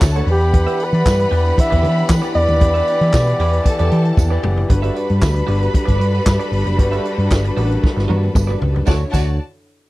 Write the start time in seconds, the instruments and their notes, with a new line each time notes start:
Already playing: tine electric piano D3 D4 F#4 C#5 E5, string section D3 A3 D4 E4 F#5, violin section A4 A5
0.02 picked electric bass D2, muted clean electric guitar stroke, kick, snare, clap, tambourine
0.15 tine electric piano D3 D4 F#4 C#5, clean electric guitar F#4 A4 C#5, closed hi-hat
0.27 picked electric bass E2, tine electric piano E3 E4 G4 D5, string section E3 B3 D4 G4, violin section B4 B5, muted clean electric guitar stroke, open hi-hat
0.32 flugelhorn G4
0.41 muted clean electric guitar stroke, closed hi-hat
0.53 muted clean electric guitar stroke, kick, closed hi-hat
0.67 clean electric guitar G4 B4 E5, closed hi-hat
0.78 clean electric guitar G4 B4 D5, closed hi-hat
0.84 flugelhorn B4
0.93 picked electric bass E3, tine electric piano E3 E4 G4 D5, muted clean electric guitar stroke, closed hi-hat
1.05 picked electric bass G2, muted clean electric guitar stroke, kick, snare, clap, tambourine
1.19 muted clean electric guitar stroke, closed hi-hat
1.31 picked electric bass E2, tine electric piano E3 E4 G4 D5, clean electric guitar G4 B4 D5, open hi-hat
1.45 muted clean electric guitar stroke, closed hi-hat
1.57 flugelhorn E5, muted clean electric guitar stroke, kick, closed hi-hat
1.70 picked electric bass E2, tine electric piano E3 E4 G4 C#5, clean electric guitar G4 B4 D5, kick, closed hi-hat
1.82 picked electric bass E3, clean electric guitar G4 B4 D5, closed hi-hat
1.96 muted clean electric guitar stroke, closed hi-hat
2.08 picked electric bass E3, muted clean electric guitar stroke, kick, snare, clap, tambourine
2.22 tine electric piano E3 E4 G4 D5, clean electric guitar G4 B4 D5, closed hi-hat
2.34 picked electric bass E2, flugelhorn D5, muted clean electric guitar stroke, open hi-hat
2.47 picked electric bass D#2, muted clean electric guitar stroke, closed hi-hat
2.60 picked electric bass E2, tine electric piano E3 E4 G4 D5, muted clean electric guitar stroke, kick, closed hi-hat
2.74 clean electric guitar G4 B4 E5, closed hi-hat
2.87 clean electric guitar G4 B4 D5, closed hi-hat
3.01 tine electric piano E3 E4 G4 E5, picked electric bass E3, muted clean electric guitar stroke, closed hi-hat
3.13 picked electric bass B2, muted clean electric guitar stroke, kick, snare, clap, tambourine
3.27 muted clean electric guitar stroke, closed hi-hat
3.39 picked electric bass E2, tine electric piano E3 E4 G4 D5, clean electric guitar G4 B4 D5, open hi-hat
3.53 muted clean electric guitar stroke, closed hi-hat
3.65 violin section A4 A5, muted clean electric guitar stroke, kick, closed hi-hat
3.79 picked electric bass E2, tine electric piano E3 E4 G4 D5, clean electric guitar G4 B4 D5, closed hi-hat
3.92 picked electric bass E3, clean electric guitar G4 B4 D5, closed hi-hat
4.05 muted clean electric guitar stroke, closed hi-hat
4.17 picked electric bass E2, muted clean electric guitar stroke, kick, high tom, tambourine
4.30 tine electric piano E3 E4 G4 D5, clean electric guitar G4 B4 D5
4.43 picked electric bass F#1, muted clean electric guitar stroke, mid tom
4.57 muted clean electric guitar stroke, floor tom
4.69 picked electric bass G1, tine electric piano G3 D4 F#4 B4, string section G3 D4 F#4 A4 B4, violin section B4 B5, muted clean electric guitar stroke, kick, closed hi-hat
4.82 tine electric piano G3 D4 F#4 B4, clean electric guitar F#4 B4 E5, closed hi-hat
4.95 clean electric guitar F#4 B4 D5, closed hi-hat
5.09 picked electric bass G2, muted clean electric guitar stroke, closed hi-hat
5.21 picked electric bass D2, muted clean electric guitar stroke, kick, snare, clap, tambourine
5.35 muted clean electric guitar stroke, closed hi-hat
5.47 picked electric bass G1, tine electric piano G3 D4 F#4 B4, clean electric guitar F#4 B4 D5, open hi-hat
5.60 muted clean electric guitar stroke, closed hi-hat
5.73 muted clean electric guitar stroke, kick, closed hi-hat
5.85 picked electric bass G1, clean electric guitar F#4 B4 D5, kick, closed hi-hat
5.98 picked electric bass G2, clean electric guitar F#4 B4 D5, closed hi-hat
6.13 muted clean electric guitar stroke, closed hi-hat
6.25 picked electric bass G2, muted clean electric guitar stroke, kick, snare, clap, tambourine
6.39 clean electric guitar F#4 B4 D5, closed hi-hat
6.52 picked electric bass G1, open hi-hat
6.66 picked electric bass F#1, muted clean electric guitar stroke, closed hi-hat
6.77 picked electric bass G1, tine electric piano G3 D4 F#4 D5, muted clean electric guitar stroke, kick, closed hi-hat
6.92 tine electric piano G3 D4 F#4 B4, clean electric guitar F#4 B4 E5, closed hi-hat
7.03 clean electric guitar F#4 B4 D5, closed hi-hat
7.17 picked electric bass G2, muted clean electric guitar stroke, closed hi-hat
7.31 picked electric bass G1, muted clean electric guitar stroke, kick, snare, clap, tambourine
7.45 muted clean electric guitar stroke, closed hi-hat
7.57 picked electric bass A1, tine electric piano G3 D4 F#4 A#4, clean electric guitar F#4 B4 D5, open hi-hat
7.65 tine electric piano B4
7.70 muted clean electric guitar stroke, closed hi-hat
7.83 muted clean electric guitar stroke, kick, snare
7.96 picked electric bass G1, muted clean electric guitar stroke, snare
8.08 picked electric bass G2, clean electric guitar F#4 B4 D5, high tom
8.23 muted clean electric guitar stroke, high tom
8.35 picked electric bass G1, muted clean electric guitar stroke, kick, mid tom, tambourine
8.47 clean electric guitar F#4 B4 D5, mid tom
8.60 picked electric bass C#2, muted clean electric guitar stroke, floor tom
8.75 muted clean electric guitar stroke, floor tom
8.87 picked electric bass D2, string section D3 D4 E4 F#4 C#5, tine electric piano D3 D4 F#4 C#5, clean electric guitar D4 F#4 C#5, violin section F#4 D5 A5, kick, snare, tambourine
9.12 picked electric bass D2, tine electric piano D3 D4 F#4 C#5, clean electric guitar D4 F#4 C#5, violin section F#4 D5 A5, kick, crash, tambourine